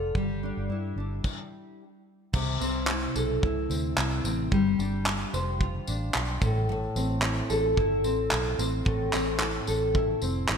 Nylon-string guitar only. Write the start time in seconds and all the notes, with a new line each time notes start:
Already playing: D3 D4 F4 A4
0.15 G3
0.43 D4
0.70 E4
0.98 D4
2.33 C3
2.60 C4
2.88 E4
3.16 A4
3.43 E4
3.70 C4
3.98 E4
4.24 C4
4.51 G3
4.79 D4
5.07 F4
5.33 C5
5.60 F4
5.88 D4
6.15 F4
6.42 A2
6.69 A2
6.96 C4
7.23 E4
7.50 A4
7.77 E4
8.04 C4
8.31 E4
8.58 C4
8.85 A2
9.13 C4
9.40 E4
9.67 A4
9.95 E4
10.22 C4
10.50 E4